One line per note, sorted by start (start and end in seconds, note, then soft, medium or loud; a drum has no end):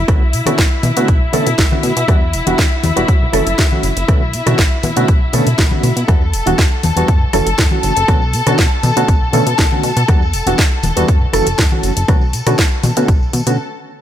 0.00 6.09 E4 medium
0.00 6.09 E5 medium
0.08 0.35 B1 medium
0.08 0.21 D3 medium
0.08 0.21 A3 medium
0.08 0.22 B3 medium
0.08 0.22 C#4 medium
0.08 0.22 F#4 loud
0.08 kick loud
0.08 cross-stick medium
0.08 closed hi-hat soft
0.08 tambourine medium
0.08 high conga loud
0.22 tambourine soft
0.33 0.42 B2 loud
0.33 open hi-hat loud
0.33 tambourine medium
0.46 0.54 B2 loud
0.46 0.58 D3 medium
0.46 0.58 A3 medium
0.46 0.58 B3 medium
0.46 0.58 C#4 medium
0.46 0.59 F#4 loud
0.46 cross-stick medium
0.46 closed hi-hat medium
0.46 tambourine soft
0.46 high conga medium
0.58 0.67 B1 loud
0.58 kick loud
0.58 snare loud
0.58 closed hi-hat medium
0.83 0.92 B2 medium
0.83 open hi-hat loud
0.83 tambourine medium
0.83 high conga medium
0.96 1.04 B2 loud
0.96 1.08 D3 medium
0.96 1.08 A3 medium
0.96 1.08 B3 medium
0.96 1.08 C#4 medium
0.96 1.09 F#4 loud
0.96 closed hi-hat medium
1.08 1.21 B1 loud
1.08 kick loud
1.08 closed hi-hat medium
1.08 tambourine soft
1.22 1.31 B2 soft
1.33 1.42 B2 medium
1.33 1.46 D3 medium
1.33 1.47 A3 medium
1.33 1.47 B3 medium
1.33 1.47 C#4 medium
1.33 1.47 A4 loud
1.33 open hi-hat loud
1.33 tambourine loud
1.33 high conga medium
1.47 1.54 B2 medium
1.47 closed hi-hat medium
1.47 tambourine soft
1.58 1.67 B1 loud
1.58 kick loud
1.58 snare loud
1.58 closed hi-hat medium
1.58 tambourine medium
1.71 1.91 D3 medium
1.71 1.91 A3 medium
1.71 1.91 B3 medium
1.71 1.92 C#4 medium
1.71 1.92 F#4 medium
1.71 high conga medium
1.83 1.92 B2 medium
1.83 open hi-hat medium
1.83 tambourine medium
1.96 2.04 B2 loud
1.96 closed hi-hat medium
1.96 tambourine soft
2.08 2.35 E2 medium
2.08 2.22 E3 medium
2.08 2.22 G3 medium
2.08 2.22 B3 medium
2.08 2.22 D4 medium
2.08 2.22 F#4 loud
2.08 kick loud
2.08 cross-stick medium
2.08 closed hi-hat soft
2.08 tambourine soft
2.08 high conga medium
2.22 tambourine soft
2.33 2.42 E1 loud
2.33 open hi-hat loud
2.33 tambourine medium
2.46 2.54 E1 loud
2.46 2.58 E3 medium
2.46 2.58 G3 medium
2.46 2.58 B3 medium
2.46 2.59 D4 medium
2.46 2.59 F#4 loud
2.46 closed hi-hat medium
2.46 tambourine soft
2.46 high conga medium
2.58 2.67 E2 loud
2.58 kick loud
2.58 snare loud
2.58 closed hi-hat medium
2.83 2.92 E1 medium
2.83 open hi-hat medium
2.83 tambourine medium
2.83 high conga loud
2.96 3.04 E1 loud
2.96 3.07 E3 medium
2.96 3.07 G3 medium
2.96 3.07 B3 medium
2.96 3.07 D4 medium
2.96 3.07 F#4 loud
2.96 closed hi-hat medium
2.96 tambourine soft
3.08 3.25 F#2 medium
3.08 kick loud
3.08 closed hi-hat medium
3.08 tambourine soft
3.22 low conga medium
3.33 3.42 F#1 medium
3.33 3.46 E3 medium
3.33 3.47 F#3 medium
3.33 3.47 A3 medium
3.33 3.47 C#4 medium
3.33 3.47 A4 loud
3.33 cross-stick medium
3.33 open hi-hat loud
3.33 tambourine medium
3.33 high conga medium
3.47 3.54 F#1 medium
3.47 closed hi-hat medium
3.47 tambourine soft
3.58 3.67 F#2 loud
3.58 kick loud
3.58 snare loud
3.58 closed hi-hat soft
3.71 3.91 E3 medium
3.71 3.91 F#3 medium
3.71 3.91 A3 medium
3.71 3.91 C#4 medium
3.71 3.91 F#4 medium
3.71 high conga medium
3.83 3.92 F#1 medium
3.83 open hi-hat medium
3.83 tambourine medium
3.97 4.04 F#1 loud
3.97 closed hi-hat medium
3.97 tambourine soft
4.08 4.35 B1 loud
4.08 4.21 D3 medium
4.08 4.22 A3 medium
4.08 4.22 B3 medium
4.08 4.22 C#4 medium
4.08 4.22 F#4 medium
4.08 kick loud
4.08 cross-stick medium
4.08 closed hi-hat soft
4.08 tambourine soft
4.08 high conga medium
4.22 tambourine soft
4.33 4.42 B2 loud
4.33 open hi-hat loud
4.33 tambourine medium
4.46 4.54 B2 loud
4.46 4.58 D3 medium
4.46 4.58 A3 medium
4.46 4.58 B3 medium
4.46 4.58 C#4 medium
4.46 4.59 F#4 medium
4.46 cross-stick medium
4.46 closed hi-hat medium
4.46 tambourine soft
4.46 high conga medium
4.58 4.67 B1 loud
4.58 kick loud
4.58 snare loud
4.58 closed hi-hat soft
4.83 4.92 B2 medium
4.83 open hi-hat medium
4.83 tambourine medium
4.83 high conga medium
4.83 low conga medium
4.96 5.04 B2 loud
4.96 5.08 D3 medium
4.96 5.08 A3 medium
4.96 5.08 B3 medium
4.96 5.08 C#4 medium
4.96 5.09 F#4 loud
4.96 closed hi-hat medium
4.96 tambourine soft
5.08 5.21 B1 medium
5.08 kick loud
5.08 closed hi-hat soft
5.08 tambourine soft
5.33 5.42 B2 medium
5.33 5.47 D3 medium
5.33 5.47 A3 medium
5.33 5.47 B3 medium
5.33 5.47 C#4 medium
5.33 5.47 A4 loud
5.33 open hi-hat loud
5.33 tambourine medium
5.33 high conga medium
5.47 5.54 B2 medium
5.47 closed hi-hat medium
5.58 5.75 B1 loud
5.58 kick loud
5.58 snare loud
5.58 closed hi-hat soft
5.71 5.91 D3 medium
5.71 5.91 A3 medium
5.71 5.91 B3 medium
5.71 5.91 C#4 medium
5.71 5.92 F#4 medium
5.71 tambourine soft
5.71 high conga medium
5.83 5.92 B2 medium
5.83 open hi-hat medium
5.83 tambourine medium
5.96 6.04 B2 medium
5.96 closed hi-hat medium
5.96 tambourine soft
6.08 6.35 E2 medium
6.08 6.21 E3 medium
6.08 6.21 G3 medium
6.08 6.22 B3 medium
6.08 6.22 D4 medium
6.08 6.22 F#4 medium
6.08 13.58 A4 medium
6.08 13.58 A5 medium
6.08 kick loud
6.08 cross-stick medium
6.08 closed hi-hat soft
6.08 tambourine soft
6.08 high conga medium
6.21 tambourine soft
6.33 6.42 E1 loud
6.33 open hi-hat loud
6.33 tambourine medium
6.46 6.54 E1 loud
6.46 6.58 E3 medium
6.46 6.58 G3 medium
6.46 6.58 B3 medium
6.46 6.59 D4 medium
6.46 6.59 F#4 medium
6.46 closed hi-hat medium
6.46 tambourine soft
6.46 high conga medium
6.58 6.67 E2 loud
6.58 kick loud
6.58 snare loud
6.58 closed hi-hat soft
6.83 6.92 E1 medium
6.83 open hi-hat medium
6.83 tambourine medium
6.83 high conga medium
6.96 7.04 E1 loud
6.96 7.07 E3 medium
6.96 7.07 G3 medium
6.96 7.07 B3 medium
6.96 7.07 D4 medium
6.96 7.07 F#4 loud
6.96 closed hi-hat medium
6.96 tambourine soft
7.08 7.25 F#2 medium
7.08 kick loud
7.08 closed hi-hat medium
7.08 tambourine soft
7.21 low conga medium
7.33 7.42 F#1 medium
7.33 7.46 E3 medium
7.33 7.47 F#3 medium
7.33 7.47 A3 medium
7.33 7.47 C#4 medium
7.33 7.47 A4 loud
7.33 cross-stick medium
7.33 open hi-hat loud
7.33 tambourine medium
7.33 high conga medium
7.46 7.54 F#1 medium
7.46 closed hi-hat medium
7.46 tambourine soft
7.58 7.67 F#2 loud
7.58 kick loud
7.58 snare loud
7.58 closed hi-hat soft
7.71 7.91 E3 medium
7.71 7.91 F#3 medium
7.71 7.91 A3 medium
7.71 7.92 C#4 medium
7.71 7.92 F#4 medium
7.71 high conga medium
7.83 7.92 F#1 medium
7.83 open hi-hat medium
7.83 tambourine medium
7.97 8.04 F#1 loud
7.97 closed hi-hat medium
7.97 tambourine soft
8.08 8.35 B1 loud
8.08 8.21 D3 medium
8.08 8.22 A3 medium
8.08 8.22 B3 medium
8.08 8.22 C#4 medium
8.08 8.22 F#4 loud
8.08 kick loud
8.08 cross-stick medium
8.08 closed hi-hat soft
8.08 tambourine medium
8.08 high conga medium
8.22 tambourine soft
8.33 8.42 B2 loud
8.33 open hi-hat loud
8.33 tambourine medium
8.46 8.54 B2 loud
8.46 8.58 D3 medium
8.46 8.58 A3 medium
8.46 8.58 B3 medium
8.46 8.59 C#4 medium
8.46 8.59 F#4 loud
8.46 cross-stick medium
8.46 closed hi-hat medium
8.46 tambourine soft
8.46 high conga medium
8.58 8.67 B1 loud
8.58 kick loud
8.58 snare loud
8.58 closed hi-hat soft
8.58 tambourine medium
8.83 8.92 B2 medium
8.83 open hi-hat medium
8.83 tambourine medium
8.83 high conga medium
8.96 9.04 B2 loud
8.96 9.08 D3 medium
8.96 9.08 A3 medium
8.96 9.08 B3 medium
8.96 9.09 C#4 medium
8.96 9.09 F#4 loud
8.96 closed hi-hat medium
8.96 tambourine soft
9.08 9.21 B1 loud
9.08 kick loud
9.08 closed hi-hat medium
9.08 tambourine medium
9.22 9.31 B2 soft
9.33 9.42 B2 medium
9.33 9.46 D3 medium
9.33 9.47 A3 medium
9.33 9.47 B3 medium
9.33 9.47 C#4 medium
9.33 9.47 A4 loud
9.33 open hi-hat loud
9.33 tambourine medium
9.33 high conga medium
9.46 9.54 B2 medium
9.46 closed hi-hat medium
9.46 tambourine soft
9.58 9.67 B1 loud
9.58 kick loud
9.58 snare loud
9.58 closed hi-hat soft
9.58 tambourine soft
9.71 9.91 D3 medium
9.71 9.91 A3 medium
9.71 9.91 B3 medium
9.71 9.91 C#4 medium
9.71 9.92 F#4 medium
9.71 high conga medium
9.83 9.92 B2 medium
9.83 open hi-hat medium
9.83 tambourine medium
9.97 10.04 B2 loud
9.97 closed hi-hat medium
9.97 tambourine soft
10.08 10.35 E2 loud
10.08 10.22 E3 medium
10.08 10.22 G3 medium
10.08 10.22 B3 medium
10.08 10.22 D4 medium
10.08 10.22 F#4 loud
10.08 kick loud
10.08 cross-stick medium
10.08 closed hi-hat medium
10.08 tambourine soft
10.08 high conga medium
10.22 tambourine soft
10.33 10.42 E1 loud
10.33 open hi-hat loud
10.33 tambourine medium
10.46 10.54 E1 loud
10.46 10.58 E3 medium
10.46 10.58 G3 medium
10.46 10.59 B3 medium
10.46 10.59 D4 medium
10.46 10.59 F#4 medium
10.46 closed hi-hat medium
10.46 tambourine soft
10.46 high conga medium
10.58 10.67 E2 loud
10.58 kick loud
10.58 snare loud
10.58 closed hi-hat medium
10.58 tambourine medium
10.83 10.92 E1 medium
10.83 open hi-hat medium
10.83 tambourine medium
10.83 high conga medium
10.96 11.04 E1 loud
10.96 11.07 E3 medium
10.96 11.07 G3 medium
10.96 11.07 B3 medium
10.96 11.07 D4 medium
10.96 11.07 F#4 loud
10.96 closed hi-hat medium
10.96 tambourine soft
11.08 11.25 F#2 loud
11.08 kick loud
11.08 closed hi-hat medium
11.08 tambourine medium
11.22 low conga medium
11.33 11.42 F#1 medium
11.33 11.47 E3 medium
11.33 11.47 F#3 medium
11.33 11.47 A3 medium
11.33 11.47 C#4 medium
11.33 11.47 A4 loud
11.33 cross-stick medium
11.33 open hi-hat loud
11.33 tambourine loud
11.33 high conga medium
11.47 11.54 F#1 medium
11.47 closed hi-hat medium
11.47 tambourine soft
11.58 11.67 F#2 loud
11.58 kick loud
11.58 snare loud
11.58 closed hi-hat medium
11.71 11.91 E3 medium
11.71 11.91 F#3 medium
11.71 11.91 A3 medium
11.71 11.92 C#4 medium
11.71 11.92 F#4 medium
11.71 high conga medium
11.83 11.92 F#1 medium
11.83 open hi-hat medium
11.83 tambourine medium
11.97 12.04 F#1 loud
11.97 closed hi-hat medium
11.97 tambourine soft
12.08 12.35 B1 loud
12.08 12.22 D3 medium
12.08 12.22 A3 medium
12.08 12.22 B3 medium
12.08 12.22 C#4 medium
12.08 12.22 F#4 loud
12.08 kick loud
12.08 cross-stick medium
12.08 closed hi-hat medium
12.08 tambourine medium
12.08 high conga medium
12.21 tambourine soft
12.33 12.42 B2 loud
12.33 open hi-hat loud
12.33 tambourine medium
12.46 12.54 B2 loud
12.46 12.58 D3 medium
12.46 12.59 A3 medium
12.46 12.59 B3 medium
12.46 12.59 C#4 medium
12.46 12.59 F#4 loud
12.46 cross-stick medium
12.46 closed hi-hat medium
12.46 tambourine soft
12.46 high conga medium
12.58 12.67 B1 loud
12.58 kick loud
12.58 snare loud
12.58 closed hi-hat medium
12.71 tambourine soft
12.83 12.92 B2 medium
12.83 open hi-hat medium
12.83 tambourine medium
12.83 high conga medium
12.83 low conga medium
12.97 13.04 B2 loud
12.97 13.08 D3 medium
12.97 13.08 A3 medium
12.97 13.09 B3 medium
12.97 13.09 C#4 medium
12.97 13.09 F#4 loud
12.97 closed hi-hat medium
12.97 tambourine soft
13.08 13.21 B1 medium
13.08 kick loud
13.08 closed hi-hat medium
13.08 tambourine soft
13.22 13.31 B2 soft
13.22 tambourine soft
13.33 13.42 B2 medium
13.33 open hi-hat loud
13.33 tambourine loud
13.33 high conga medium
13.47 13.58 B2 medium
13.47 13.56 D3 medium
13.47 13.56 A3 medium
13.47 13.56 B3 medium
13.47 13.56 C#4 medium
13.47 13.56 F#4 medium
13.47 closed hi-hat medium
13.47 tambourine soft